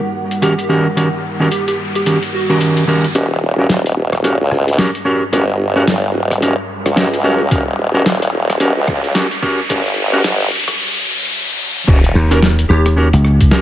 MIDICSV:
0, 0, Header, 1, 9, 480
1, 0, Start_track
1, 0, Tempo, 545455
1, 854, Time_signature, 4, 2, 24, 8
1, 11981, End_track
2, 0, Start_track
2, 0, Title_t, "Digital synth lead"
2, 0, Program_c, 0, 84
2, 376, Note_on_c, 0, 67, 82
2, 467, Note_off_c, 0, 67, 0
2, 512, Note_on_c, 0, 67, 77
2, 577, Note_off_c, 0, 67, 0
2, 1330, Note_on_c, 0, 67, 85
2, 1424, Note_off_c, 0, 67, 0
2, 1480, Note_on_c, 0, 67, 76
2, 1541, Note_off_c, 0, 67, 0
2, 1724, Note_on_c, 0, 67, 89
2, 1783, Note_off_c, 0, 67, 0
2, 1818, Note_on_c, 0, 67, 79
2, 1908, Note_off_c, 0, 67, 0
2, 2064, Note_on_c, 0, 66, 86
2, 2151, Note_off_c, 0, 66, 0
2, 2202, Note_on_c, 0, 66, 75
2, 2262, Note_off_c, 0, 66, 0
2, 10833, Note_on_c, 0, 70, 96
2, 10978, Note_off_c, 0, 70, 0
2, 11168, Note_on_c, 0, 67, 98
2, 11345, Note_off_c, 0, 67, 0
2, 11981, End_track
3, 0, Start_track
3, 0, Title_t, "Analog synth pad"
3, 0, Program_c, 1, 89
3, 0, Note_on_c, 1, 55, 77
3, 0, Note_on_c, 1, 63, 75
3, 0, Note_on_c, 1, 70, 73
3, 0, Note_on_c, 1, 78, 88
3, 2736, Note_off_c, 1, 55, 0
3, 2737, Note_off_c, 1, 63, 0
3, 2738, Note_off_c, 1, 70, 0
3, 2766, Note_off_c, 1, 78, 0
3, 2773, Note_on_c, 1, 73, 88
3, 2775, Note_on_c, 1, 55, 86
3, 2776, Note_on_c, 1, 66, 77
3, 10418, Note_off_c, 1, 73, 0
3, 10419, Note_off_c, 1, 55, 0
3, 10420, Note_off_c, 1, 66, 0
3, 11981, End_track
4, 0, Start_track
4, 0, Title_t, "Clean electric guitar"
4, 0, Program_c, 2, 27
4, 368, Note_on_c, 2, 51, 85
4, 372, Note_on_c, 2, 61, 83
4, 375, Note_on_c, 2, 66, 82
4, 378, Note_on_c, 2, 67, 80
4, 381, Note_on_c, 2, 70, 99
4, 467, Note_off_c, 2, 51, 0
4, 467, Note_off_c, 2, 61, 0
4, 467, Note_off_c, 2, 66, 0
4, 468, Note_off_c, 2, 67, 0
4, 468, Note_off_c, 2, 70, 0
4, 608, Note_on_c, 2, 51, 86
4, 610, Note_on_c, 2, 61, 78
4, 610, Note_on_c, 2, 66, 75
4, 611, Note_on_c, 2, 67, 81
4, 614, Note_on_c, 2, 70, 94
4, 760, Note_off_c, 2, 51, 0
4, 760, Note_off_c, 2, 61, 0
4, 760, Note_off_c, 2, 66, 0
4, 760, Note_off_c, 2, 67, 0
4, 761, Note_off_c, 2, 70, 0
4, 848, Note_on_c, 2, 51, 75
4, 851, Note_on_c, 2, 61, 67
4, 853, Note_on_c, 2, 66, 66
4, 855, Note_on_c, 2, 67, 67
4, 857, Note_on_c, 2, 70, 82
4, 946, Note_off_c, 2, 66, 0
4, 947, Note_off_c, 2, 51, 0
4, 947, Note_off_c, 2, 61, 0
4, 947, Note_off_c, 2, 67, 0
4, 947, Note_off_c, 2, 70, 0
4, 1229, Note_on_c, 2, 51, 84
4, 1234, Note_on_c, 2, 61, 78
4, 1238, Note_on_c, 2, 66, 78
4, 1242, Note_on_c, 2, 67, 78
4, 1246, Note_on_c, 2, 70, 96
4, 1299, Note_off_c, 2, 51, 0
4, 1300, Note_off_c, 2, 61, 0
4, 1300, Note_off_c, 2, 66, 0
4, 1300, Note_off_c, 2, 67, 0
4, 1300, Note_off_c, 2, 70, 0
4, 1813, Note_on_c, 2, 51, 76
4, 1816, Note_on_c, 2, 61, 63
4, 1816, Note_on_c, 2, 67, 63
4, 1817, Note_on_c, 2, 70, 78
4, 1818, Note_on_c, 2, 66, 63
4, 1908, Note_off_c, 2, 51, 0
4, 1908, Note_off_c, 2, 67, 0
4, 1908, Note_off_c, 2, 70, 0
4, 1909, Note_off_c, 2, 61, 0
4, 1909, Note_off_c, 2, 66, 0
4, 2195, Note_on_c, 2, 51, 83
4, 2196, Note_on_c, 2, 61, 78
4, 2196, Note_on_c, 2, 66, 75
4, 2197, Note_on_c, 2, 67, 75
4, 2200, Note_on_c, 2, 70, 93
4, 2510, Note_off_c, 2, 66, 0
4, 2510, Note_off_c, 2, 67, 0
4, 2510, Note_off_c, 2, 70, 0
4, 2511, Note_off_c, 2, 51, 0
4, 2511, Note_off_c, 2, 61, 0
4, 2528, Note_on_c, 2, 51, 88
4, 2531, Note_on_c, 2, 61, 82
4, 2533, Note_on_c, 2, 66, 80
4, 2538, Note_on_c, 2, 67, 80
4, 2540, Note_on_c, 2, 70, 101
4, 2680, Note_off_c, 2, 66, 0
4, 2680, Note_off_c, 2, 70, 0
4, 2681, Note_off_c, 2, 51, 0
4, 2681, Note_off_c, 2, 61, 0
4, 2681, Note_off_c, 2, 67, 0
4, 2771, Note_on_c, 2, 61, 75
4, 2771, Note_on_c, 2, 66, 67
4, 2775, Note_on_c, 2, 67, 67
4, 2775, Note_on_c, 2, 70, 81
4, 2866, Note_off_c, 2, 70, 0
4, 2867, Note_off_c, 2, 66, 0
4, 2867, Note_off_c, 2, 67, 0
4, 2868, Note_off_c, 2, 61, 0
4, 3153, Note_on_c, 2, 61, 85
4, 3159, Note_on_c, 2, 66, 79
4, 3164, Note_on_c, 2, 67, 79
4, 3167, Note_on_c, 2, 70, 91
4, 3221, Note_off_c, 2, 61, 0
4, 3222, Note_off_c, 2, 66, 0
4, 3222, Note_off_c, 2, 67, 0
4, 3222, Note_off_c, 2, 70, 0
4, 3729, Note_on_c, 2, 61, 70
4, 3729, Note_on_c, 2, 66, 66
4, 3733, Note_on_c, 2, 67, 66
4, 3734, Note_on_c, 2, 70, 83
4, 3826, Note_off_c, 2, 66, 0
4, 3826, Note_off_c, 2, 67, 0
4, 3826, Note_off_c, 2, 70, 0
4, 3827, Note_off_c, 2, 61, 0
4, 4206, Note_on_c, 2, 61, 88
4, 4210, Note_on_c, 2, 66, 81
4, 4214, Note_on_c, 2, 67, 81
4, 4217, Note_on_c, 2, 70, 100
4, 4306, Note_off_c, 2, 61, 0
4, 4306, Note_off_c, 2, 66, 0
4, 4306, Note_off_c, 2, 67, 0
4, 4306, Note_off_c, 2, 70, 0
4, 4443, Note_on_c, 2, 61, 85
4, 4449, Note_on_c, 2, 66, 84
4, 4452, Note_on_c, 2, 67, 79
4, 4455, Note_on_c, 2, 70, 99
4, 4599, Note_off_c, 2, 61, 0
4, 4599, Note_off_c, 2, 66, 0
4, 4599, Note_off_c, 2, 67, 0
4, 4599, Note_off_c, 2, 70, 0
4, 4685, Note_on_c, 2, 61, 79
4, 4687, Note_on_c, 2, 66, 68
4, 4687, Note_on_c, 2, 67, 73
4, 4690, Note_on_c, 2, 70, 82
4, 4784, Note_off_c, 2, 61, 0
4, 4784, Note_off_c, 2, 66, 0
4, 4784, Note_off_c, 2, 67, 0
4, 4785, Note_off_c, 2, 70, 0
4, 5067, Note_on_c, 2, 61, 89
4, 5071, Note_on_c, 2, 66, 78
4, 5075, Note_on_c, 2, 67, 79
4, 5079, Note_on_c, 2, 70, 95
4, 5138, Note_off_c, 2, 61, 0
4, 5138, Note_off_c, 2, 66, 0
4, 5138, Note_off_c, 2, 67, 0
4, 5138, Note_off_c, 2, 70, 0
4, 5651, Note_on_c, 2, 61, 77
4, 5651, Note_on_c, 2, 66, 68
4, 5656, Note_on_c, 2, 67, 73
4, 5656, Note_on_c, 2, 70, 83
4, 5747, Note_off_c, 2, 66, 0
4, 5747, Note_off_c, 2, 70, 0
4, 5748, Note_off_c, 2, 61, 0
4, 5748, Note_off_c, 2, 67, 0
4, 6125, Note_on_c, 2, 61, 93
4, 6130, Note_on_c, 2, 66, 85
4, 6133, Note_on_c, 2, 67, 83
4, 6139, Note_on_c, 2, 70, 102
4, 6225, Note_off_c, 2, 67, 0
4, 6226, Note_off_c, 2, 61, 0
4, 6226, Note_off_c, 2, 66, 0
4, 6226, Note_off_c, 2, 70, 0
4, 6370, Note_on_c, 2, 61, 91
4, 6370, Note_on_c, 2, 66, 82
4, 6373, Note_on_c, 2, 67, 81
4, 6374, Note_on_c, 2, 70, 98
4, 6520, Note_off_c, 2, 66, 0
4, 6520, Note_off_c, 2, 70, 0
4, 6521, Note_off_c, 2, 61, 0
4, 6521, Note_off_c, 2, 67, 0
4, 6607, Note_on_c, 2, 61, 79
4, 6610, Note_on_c, 2, 66, 69
4, 6612, Note_on_c, 2, 67, 70
4, 6615, Note_on_c, 2, 70, 87
4, 6706, Note_off_c, 2, 61, 0
4, 6706, Note_off_c, 2, 66, 0
4, 6706, Note_off_c, 2, 67, 0
4, 6706, Note_off_c, 2, 70, 0
4, 6987, Note_on_c, 2, 61, 86
4, 6989, Note_on_c, 2, 66, 80
4, 6992, Note_on_c, 2, 67, 84
4, 6994, Note_on_c, 2, 70, 95
4, 7057, Note_off_c, 2, 61, 0
4, 7057, Note_off_c, 2, 66, 0
4, 7057, Note_off_c, 2, 67, 0
4, 7057, Note_off_c, 2, 70, 0
4, 7569, Note_on_c, 2, 61, 79
4, 7573, Note_on_c, 2, 66, 67
4, 7573, Note_on_c, 2, 67, 69
4, 7577, Note_on_c, 2, 70, 89
4, 7667, Note_off_c, 2, 61, 0
4, 7667, Note_off_c, 2, 67, 0
4, 7667, Note_off_c, 2, 70, 0
4, 7668, Note_off_c, 2, 66, 0
4, 8048, Note_on_c, 2, 61, 93
4, 8051, Note_on_c, 2, 66, 84
4, 8053, Note_on_c, 2, 67, 88
4, 8058, Note_on_c, 2, 70, 97
4, 8146, Note_off_c, 2, 67, 0
4, 8146, Note_off_c, 2, 70, 0
4, 8147, Note_off_c, 2, 61, 0
4, 8147, Note_off_c, 2, 66, 0
4, 8293, Note_on_c, 2, 61, 97
4, 8295, Note_on_c, 2, 66, 89
4, 8296, Note_on_c, 2, 67, 82
4, 8297, Note_on_c, 2, 70, 103
4, 8442, Note_off_c, 2, 61, 0
4, 8442, Note_off_c, 2, 66, 0
4, 8442, Note_off_c, 2, 67, 0
4, 8442, Note_off_c, 2, 70, 0
4, 8532, Note_on_c, 2, 61, 82
4, 8535, Note_on_c, 2, 66, 70
4, 8535, Note_on_c, 2, 67, 72
4, 8538, Note_on_c, 2, 70, 88
4, 8628, Note_off_c, 2, 61, 0
4, 8628, Note_off_c, 2, 66, 0
4, 8628, Note_off_c, 2, 67, 0
4, 8628, Note_off_c, 2, 70, 0
4, 8915, Note_on_c, 2, 61, 94
4, 8916, Note_on_c, 2, 66, 84
4, 8918, Note_on_c, 2, 67, 84
4, 8919, Note_on_c, 2, 70, 98
4, 8980, Note_off_c, 2, 66, 0
4, 8981, Note_off_c, 2, 61, 0
4, 8981, Note_off_c, 2, 67, 0
4, 8981, Note_off_c, 2, 70, 0
4, 10450, Note_on_c, 2, 61, 79
4, 10455, Note_on_c, 2, 66, 76
4, 10458, Note_on_c, 2, 67, 73
4, 10462, Note_on_c, 2, 70, 85
4, 10548, Note_off_c, 2, 61, 0
4, 10548, Note_off_c, 2, 67, 0
4, 10548, Note_off_c, 2, 70, 0
4, 10549, Note_off_c, 2, 66, 0
4, 10833, Note_on_c, 2, 61, 93
4, 10836, Note_on_c, 2, 66, 86
4, 10840, Note_on_c, 2, 67, 82
4, 10843, Note_on_c, 2, 70, 103
4, 10900, Note_off_c, 2, 66, 0
4, 10900, Note_off_c, 2, 67, 0
4, 10900, Note_off_c, 2, 70, 0
4, 10901, Note_off_c, 2, 61, 0
4, 11409, Note_on_c, 2, 61, 74
4, 11413, Note_on_c, 2, 66, 68
4, 11417, Note_on_c, 2, 67, 72
4, 11422, Note_on_c, 2, 70, 82
4, 11507, Note_off_c, 2, 66, 0
4, 11507, Note_off_c, 2, 67, 0
4, 11507, Note_off_c, 2, 70, 0
4, 11508, Note_off_c, 2, 61, 0
4, 11890, Note_on_c, 2, 61, 91
4, 11893, Note_on_c, 2, 66, 85
4, 11893, Note_on_c, 2, 70, 100
4, 11894, Note_on_c, 2, 67, 88
4, 11981, Note_off_c, 2, 61, 0
4, 11981, Note_off_c, 2, 66, 0
4, 11981, Note_off_c, 2, 67, 0
4, 11981, Note_off_c, 2, 70, 0
4, 11981, End_track
5, 0, Start_track
5, 0, Title_t, "Slap bass"
5, 0, Program_c, 3, 36
5, 10694, Note_on_c, 3, 39, 95
5, 11159, Note_off_c, 3, 39, 0
5, 11173, Note_on_c, 3, 39, 96
5, 11534, Note_off_c, 3, 39, 0
5, 11557, Note_on_c, 3, 37, 92
5, 11879, Note_off_c, 3, 37, 0
5, 11981, End_track
6, 0, Start_track
6, 0, Title_t, "Wobble bass"
6, 0, Program_c, 4, 39
6, 2771, Note_on_c, 4, 27, 92
6, 2997, Note_off_c, 4, 27, 0
6, 3016, Note_on_c, 4, 27, 93
6, 3480, Note_off_c, 4, 27, 0
6, 3493, Note_on_c, 4, 27, 95
6, 3854, Note_off_c, 4, 27, 0
6, 3876, Note_on_c, 4, 37, 97
6, 4198, Note_off_c, 4, 37, 0
6, 4692, Note_on_c, 4, 31, 98
6, 5398, Note_off_c, 4, 31, 0
6, 5410, Note_on_c, 4, 27, 99
6, 5772, Note_off_c, 4, 27, 0
6, 6034, Note_on_c, 4, 37, 92
6, 6597, Note_off_c, 4, 37, 0
6, 6610, Note_on_c, 4, 27, 97
6, 6836, Note_off_c, 4, 27, 0
6, 6849, Note_on_c, 4, 27, 94
6, 7316, Note_off_c, 4, 27, 0
6, 7329, Note_on_c, 4, 27, 103
6, 7692, Note_off_c, 4, 27, 0
6, 7716, Note_on_c, 4, 37, 99
6, 8038, Note_off_c, 4, 37, 0
6, 8536, Note_on_c, 4, 31, 99
6, 9239, Note_off_c, 4, 31, 0
6, 10454, Note_on_c, 4, 27, 101
6, 10679, Note_off_c, 4, 27, 0
6, 11981, End_track
7, 0, Start_track
7, 0, Title_t, "Impact"
7, 0, Program_c, 5, 103
7, 10455, Note_on_c, 5, 60, 74
7, 11981, Note_off_c, 5, 60, 0
7, 11981, End_track
8, 0, Start_track
8, 0, Title_t, "Riser"
8, 0, Program_c, 6, 103
8, 0, Note_on_c, 6, 60, 73
8, 2774, Note_off_c, 6, 60, 0
8, 2775, Note_on_c, 6, 60, 79
8, 10455, Note_off_c, 6, 60, 0
8, 11981, End_track
9, 0, Start_track
9, 0, Title_t, "Drums"
9, 275, Note_on_c, 9, 42, 33
9, 363, Note_off_c, 9, 42, 0
9, 373, Note_on_c, 9, 42, 72
9, 461, Note_off_c, 9, 42, 0
9, 517, Note_on_c, 9, 42, 33
9, 605, Note_off_c, 9, 42, 0
9, 855, Note_on_c, 9, 42, 75
9, 943, Note_off_c, 9, 42, 0
9, 1334, Note_on_c, 9, 42, 75
9, 1422, Note_off_c, 9, 42, 0
9, 1477, Note_on_c, 9, 42, 51
9, 1565, Note_off_c, 9, 42, 0
9, 1719, Note_on_c, 9, 42, 50
9, 1807, Note_off_c, 9, 42, 0
9, 1816, Note_on_c, 9, 42, 78
9, 1904, Note_off_c, 9, 42, 0
9, 1958, Note_on_c, 9, 42, 36
9, 2046, Note_off_c, 9, 42, 0
9, 2296, Note_on_c, 9, 42, 78
9, 2384, Note_off_c, 9, 42, 0
9, 2437, Note_on_c, 9, 42, 36
9, 2525, Note_off_c, 9, 42, 0
9, 2678, Note_on_c, 9, 42, 35
9, 2766, Note_off_c, 9, 42, 0
9, 2773, Note_on_c, 9, 42, 80
9, 2861, Note_off_c, 9, 42, 0
9, 3252, Note_on_c, 9, 38, 118
9, 3252, Note_on_c, 9, 42, 78
9, 3340, Note_off_c, 9, 38, 0
9, 3340, Note_off_c, 9, 42, 0
9, 3396, Note_on_c, 9, 42, 54
9, 3484, Note_off_c, 9, 42, 0
9, 3633, Note_on_c, 9, 37, 52
9, 3721, Note_off_c, 9, 37, 0
9, 3733, Note_on_c, 9, 42, 76
9, 3821, Note_off_c, 9, 42, 0
9, 3972, Note_on_c, 9, 37, 37
9, 4060, Note_off_c, 9, 37, 0
9, 4118, Note_on_c, 9, 42, 34
9, 4165, Note_off_c, 9, 42, 0
9, 4165, Note_on_c, 9, 42, 30
9, 4211, Note_off_c, 9, 42, 0
9, 4211, Note_on_c, 9, 38, 119
9, 4211, Note_on_c, 9, 42, 81
9, 4285, Note_off_c, 9, 42, 0
9, 4285, Note_on_c, 9, 42, 20
9, 4299, Note_off_c, 9, 38, 0
9, 4355, Note_off_c, 9, 42, 0
9, 4355, Note_on_c, 9, 42, 37
9, 4443, Note_off_c, 9, 42, 0
9, 4689, Note_on_c, 9, 42, 78
9, 4777, Note_off_c, 9, 42, 0
9, 5170, Note_on_c, 9, 38, 124
9, 5170, Note_on_c, 9, 42, 81
9, 5258, Note_off_c, 9, 38, 0
9, 5258, Note_off_c, 9, 42, 0
9, 5555, Note_on_c, 9, 37, 49
9, 5555, Note_on_c, 9, 42, 53
9, 5643, Note_off_c, 9, 37, 0
9, 5643, Note_off_c, 9, 42, 0
9, 5653, Note_on_c, 9, 42, 79
9, 5741, Note_off_c, 9, 42, 0
9, 6035, Note_on_c, 9, 37, 36
9, 6035, Note_on_c, 9, 42, 36
9, 6123, Note_off_c, 9, 37, 0
9, 6123, Note_off_c, 9, 42, 0
9, 6135, Note_on_c, 9, 38, 122
9, 6135, Note_on_c, 9, 42, 83
9, 6223, Note_off_c, 9, 38, 0
9, 6223, Note_off_c, 9, 42, 0
9, 6279, Note_on_c, 9, 42, 38
9, 6367, Note_off_c, 9, 42, 0
9, 6611, Note_on_c, 9, 42, 83
9, 6612, Note_on_c, 9, 36, 115
9, 6699, Note_off_c, 9, 42, 0
9, 6700, Note_off_c, 9, 36, 0
9, 7093, Note_on_c, 9, 38, 127
9, 7093, Note_on_c, 9, 42, 85
9, 7181, Note_off_c, 9, 38, 0
9, 7181, Note_off_c, 9, 42, 0
9, 7236, Note_on_c, 9, 42, 51
9, 7324, Note_off_c, 9, 42, 0
9, 7477, Note_on_c, 9, 37, 51
9, 7477, Note_on_c, 9, 42, 56
9, 7565, Note_off_c, 9, 37, 0
9, 7565, Note_off_c, 9, 42, 0
9, 7569, Note_on_c, 9, 42, 81
9, 7657, Note_off_c, 9, 42, 0
9, 7811, Note_on_c, 9, 37, 35
9, 7814, Note_on_c, 9, 36, 113
9, 7899, Note_off_c, 9, 37, 0
9, 7902, Note_off_c, 9, 36, 0
9, 7955, Note_on_c, 9, 42, 36
9, 8043, Note_off_c, 9, 42, 0
9, 8053, Note_on_c, 9, 38, 127
9, 8053, Note_on_c, 9, 42, 83
9, 8141, Note_off_c, 9, 38, 0
9, 8141, Note_off_c, 9, 42, 0
9, 8196, Note_on_c, 9, 42, 38
9, 8284, Note_off_c, 9, 42, 0
9, 8295, Note_on_c, 9, 36, 112
9, 8383, Note_off_c, 9, 36, 0
9, 8536, Note_on_c, 9, 36, 116
9, 8536, Note_on_c, 9, 42, 80
9, 8624, Note_off_c, 9, 36, 0
9, 8624, Note_off_c, 9, 42, 0
9, 8681, Note_on_c, 9, 42, 34
9, 8699, Note_off_c, 9, 42, 0
9, 8699, Note_on_c, 9, 42, 28
9, 8745, Note_off_c, 9, 42, 0
9, 8745, Note_on_c, 9, 42, 24
9, 8833, Note_off_c, 9, 42, 0
9, 9014, Note_on_c, 9, 38, 124
9, 9014, Note_on_c, 9, 42, 80
9, 9102, Note_off_c, 9, 38, 0
9, 9102, Note_off_c, 9, 42, 0
9, 9158, Note_on_c, 9, 42, 24
9, 9181, Note_off_c, 9, 42, 0
9, 9181, Note_on_c, 9, 42, 27
9, 9204, Note_off_c, 9, 42, 0
9, 9204, Note_on_c, 9, 42, 28
9, 9230, Note_off_c, 9, 42, 0
9, 9230, Note_on_c, 9, 42, 32
9, 9253, Note_off_c, 9, 42, 0
9, 9253, Note_on_c, 9, 42, 37
9, 9288, Note_off_c, 9, 42, 0
9, 9288, Note_on_c, 9, 42, 41
9, 9324, Note_off_c, 9, 42, 0
9, 9324, Note_on_c, 9, 42, 44
9, 9359, Note_off_c, 9, 42, 0
9, 9359, Note_on_c, 9, 42, 46
9, 9396, Note_off_c, 9, 42, 0
9, 9396, Note_on_c, 9, 37, 50
9, 9396, Note_on_c, 9, 42, 54
9, 9484, Note_off_c, 9, 37, 0
9, 9484, Note_off_c, 9, 42, 0
9, 10456, Note_on_c, 9, 36, 112
9, 10456, Note_on_c, 9, 49, 106
9, 10544, Note_off_c, 9, 36, 0
9, 10544, Note_off_c, 9, 49, 0
9, 10596, Note_on_c, 9, 42, 57
9, 10684, Note_off_c, 9, 42, 0
9, 10837, Note_on_c, 9, 42, 66
9, 10925, Note_off_c, 9, 42, 0
9, 10934, Note_on_c, 9, 38, 120
9, 11022, Note_off_c, 9, 38, 0
9, 11078, Note_on_c, 9, 42, 56
9, 11166, Note_off_c, 9, 42, 0
9, 11316, Note_on_c, 9, 37, 54
9, 11316, Note_on_c, 9, 42, 70
9, 11404, Note_off_c, 9, 37, 0
9, 11404, Note_off_c, 9, 42, 0
9, 11557, Note_on_c, 9, 42, 39
9, 11645, Note_off_c, 9, 42, 0
9, 11656, Note_on_c, 9, 37, 40
9, 11744, Note_off_c, 9, 37, 0
9, 11797, Note_on_c, 9, 42, 68
9, 11798, Note_on_c, 9, 36, 60
9, 11885, Note_off_c, 9, 42, 0
9, 11886, Note_off_c, 9, 36, 0
9, 11893, Note_on_c, 9, 38, 123
9, 11981, Note_off_c, 9, 38, 0
9, 11981, End_track
0, 0, End_of_file